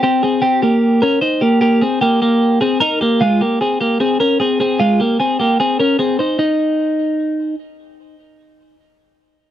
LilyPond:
\new Staff \with { instrumentName = "Clean electric guitar" } { \time 4/4 \key aes \major \tempo 4 = 151 <c' g'>8 <c' aes'>8 <c' g'>8 <bes g'>4 <des' bes'>8 <ees' c''>8 <bes g'>8 | <bes g'>8 <c' aes'>8 <bes g'>8 <bes g'>4 <c' aes'>8 <ees' bes'>8 <bes g'>8 | <aes f'>8 <bes g'>8 <c' aes'>8 <bes g'>8 <c' aes'>8 <des' bes'>8 <c' aes'>8 <c' aes'>8 | <aes f'>8 <bes g'>8 <c' aes'>8 <bes g'>8 <c' aes'>8 <des' bes'>8 <c' aes'>8 <ees' c''>8 |
ees'2. r4 | r1 | }